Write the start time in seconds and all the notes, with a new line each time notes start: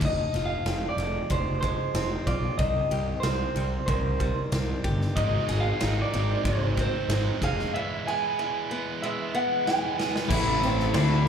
0.01 F1 F2, kick, crash
0.05 D#5
0.33 F1 F4, snare, ride
0.46 F5
0.66 F1 C4, snare, ride
0.89 D5
0.97 F1 G#3, ride
1.30 F1 F3 C5, kick, ride
1.61 G#3 C5, kick, ride
1.94 F1 C4, snare, ride
2.27 B1 F4 D5, kick, ride
2.58 C2 C3 D#5, kick, ride
2.91 C2 G4, ride
3.20 C2 C5, snare, ride
3.24 C4
3.56 C2 G3, ride
3.86 C2 D#3 C5, kick, ride
4.20 G3, kick, ride
4.52 C2 C4, snare, ride
4.84 G1 G4, kick, ride
5.01 snare
5.16 G#1 G#2 D#3 G#3 C4 D#4 D#5, kick, ride
5.48 G#1 G#2 D#3 G#3 C4 D#4 G#4, snare, ride
5.60 F5
5.80 G#1 G#2 D#3 G#3 C4 D#4, snare, ride
6.02 D5
6.12 G#1 G#2 D#3 G#3 C4 D#4, ride
6.44 G#1 G#2 D#3 G#3 C4 D#4 C5, kick, ride
6.76 G#2 D#3 G#3 C4 D#4, kick, ride
6.81 C5
7.09 G#1 G#2 D#3 G#3 C4 D#4, snare, ride
7.41 F1 G#2 D#3 G#3 C4 D#4 G#4 F5, kick, ride
7.59 snare
7.73 E2 E3 G#3 B3 E4 E5
8.06 E3 G#3 B3 E4 G#4 G#5
8.39 E3 G#3 B3 E4
8.70 E3 G#3 B3 E4
9.02 E3 G#3 B3 E4 E5
9.34 E3 G#3 B3 E4 F#5
9.65 E3 G#3 B3 E4 G#5, snare
9.98 E3 G#3 B3 E4 G#4, snare
10.16 snare
10.29 A1 A2 E3 A3 E4 A4 E5, kick, crash
10.33 A5
10.63 C4 C5, crash
10.80 snare
10.93 D2 D3 A3 D4 E4 E5, snare, crash